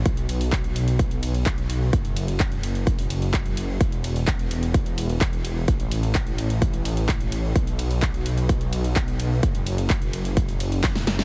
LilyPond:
<<
  \new Staff \with { instrumentName = "Detuned saw bass" } { \clef bass \time 4/4 \key b \mixolydian \tempo 4 = 128 b,,1 | fis,,1 | e,,1 | a,,1 |
b,,1 | fis,,1 | }
  \new DrumStaff \with { instrumentName = "Drums" } \drummode { \time 4/4 <hh bd>16 hh16 <hho cymr>16 hho16 <hc hh bd>16 hh16 <hho cymr>16 hh16 <hh bd>16 hh16 <hho cymr>16 hh16 <hc hh bd>16 hh16 <hho cymr>8 | <hh bd>16 hh16 <hho cymr>16 hh16 <hc hh bd>16 hh16 <hho cymr>16 hh16 <hh bd>16 hho16 <hho cymr>16 hh16 <hc hh bd>16 hh16 <hho cymr>8 | <hh bd>16 hh16 <hho cymr>16 hho16 <hc hh bd>16 hh16 <hho cymr>16 hh16 <hh bd>16 hh16 <hho cymr>16 hh16 <hc hh bd>16 hh16 <hho cymr>8 | <hh bd>16 hh16 <hho cymr>16 hh16 <hc hh bd>16 hh16 <hho cymr>16 hh16 <hh bd>16 hh16 <hho cymr>16 hh16 <hc hh bd>16 hh16 <hho cymr>8 |
<hh bd>16 hh16 <hho cymr>16 hho16 <hc hh bd>16 hh16 <hho cymr>16 hh16 <hh bd>16 hh16 <hho cymr>16 hh16 <hc hh bd>16 hh16 <hho cymr>8 | <hh bd>16 hh16 <hho cymr>16 hh16 <hc hh bd>16 hh16 <hho cymr>16 hh16 <hh bd>16 hho16 <hho cymr>16 hh16 <hc hh bd sn>16 <hh sn>16 <hho cymr sn>16 <hh sn>16 | }
>>